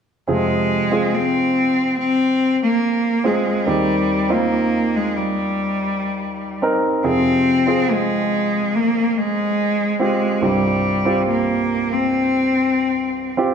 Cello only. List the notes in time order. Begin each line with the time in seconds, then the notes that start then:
0.30 G#3
1.14 C4
1.99 C4
2.63 A#3
3.26 G#3
3.69 G3
4.32 A#3
4.96 G#3
5.16 G3
7.07 C4
7.92 G#3
8.76 A#3
9.10 A#3
9.18 G#3
10.02 G#3
10.45 G3
11.30 A#3
11.93 C4